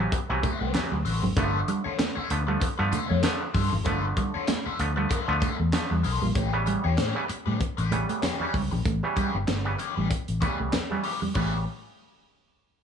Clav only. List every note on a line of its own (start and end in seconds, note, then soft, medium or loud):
0.00 0.19 C3 medium
0.00 0.19 E3 medium
0.00 0.19 F#3 medium
0.00 0.20 B3 loud
0.30 0.51 C3 loud
0.30 0.51 E3 loud
0.30 0.51 F#3 loud
0.30 0.51 B3 loud
0.61 0.67 F#3 soft
0.61 0.68 B3 soft
0.75 0.98 C3 medium
0.75 0.98 E3 medium
0.75 0.98 F#3 medium
0.75 0.98 B3 loud
1.06 1.14 F#3 soft
1.06 1.14 B3 soft
1.24 1.30 F#3 soft
1.24 1.30 B3 soft
1.37 2.04 D3 loud
1.37 2.04 F3 loud
1.37 2.04 A3 loud
1.37 2.04 B3 loud
2.31 2.43 D3 loud
2.31 2.43 F3 medium
2.31 2.43 A3 medium
2.31 2.43 B3 loud
2.48 2.69 D3 medium
2.48 2.69 F3 medium
2.48 2.69 A3 medium
2.48 2.69 B3 medium
2.79 3.00 D3 loud
2.79 3.00 F3 loud
2.79 3.00 A3 loud
2.79 3.00 B3 loud
3.10 3.17 A3 soft
3.10 3.17 B3 soft
3.24 3.47 D3 loud
3.24 3.47 F3 medium
3.24 3.47 A3 medium
3.24 3.47 B3 loud
3.55 3.64 A3 soft
3.55 3.64 D4 soft
3.72 3.79 A3 soft
3.72 3.79 B3 soft
3.86 4.53 D3 loud
3.86 4.53 F3 loud
3.86 4.53 A3 loud
3.86 4.53 B3 loud
4.80 4.92 D3 medium
4.80 4.92 F3 medium
4.80 4.92 A3 medium
4.80 4.92 B3 loud
4.97 5.18 D3 medium
4.97 5.18 F3 medium
4.97 5.18 A3 medium
4.97 5.18 B3 loud
5.28 5.49 D3 loud
5.28 5.49 F3 loud
5.28 5.50 A3 loud
5.28 5.50 B3 loud
5.59 5.66 A3 soft
5.59 5.66 B3 soft
5.73 5.97 D3 loud
5.73 5.97 F3 medium
5.73 5.97 A3 medium
5.73 5.97 B3 loud
6.05 6.13 A3 soft
6.05 6.13 B3 soft
6.22 6.29 A3 soft
6.22 6.29 B3 soft
6.53 6.86 C#3 loud
6.53 6.86 E3 loud
6.53 6.86 G3 loud
6.53 6.86 B3 loud
7.15 7.25 C#3 medium
7.15 7.25 E3 medium
7.15 7.25 G3 medium
7.15 7.25 B3 loud
7.29 7.38 G3 soft
7.29 7.38 B3 soft
7.92 8.25 C#3 loud
7.92 8.25 E3 medium
7.92 8.25 G3 loud
7.92 8.26 B3 loud
8.40 8.62 C#3 medium
8.40 8.62 E3 medium
8.40 8.62 G3 medium
8.40 8.62 C#4 loud
8.72 8.78 G3 soft
8.72 8.79 A3 soft
9.03 9.36 C#3 loud
9.03 9.36 E3 loud
9.03 9.36 G3 loud
9.03 9.36 B3 loud
9.48 9.56 G3 soft
9.48 9.57 B3 soft
9.65 9.75 C#3 medium
9.65 9.75 E3 medium
9.65 9.75 G3 medium
9.65 9.75 B3 loud
9.79 9.88 G3 soft
9.79 9.88 B3 soft
10.42 10.75 C#3 loud
10.42 10.75 E3 medium
10.42 10.75 G3 medium
10.42 10.76 B3 loud
10.91 11.12 C#3 medium
10.91 11.12 E3 medium
10.91 11.12 G3 medium
10.91 11.12 B3 medium
11.22 11.28 G3 soft
11.22 11.29 B3 soft
11.35 11.65 C#3 medium
11.35 11.65 E3 medium
11.35 11.65 G3 medium
11.35 11.65 B3 medium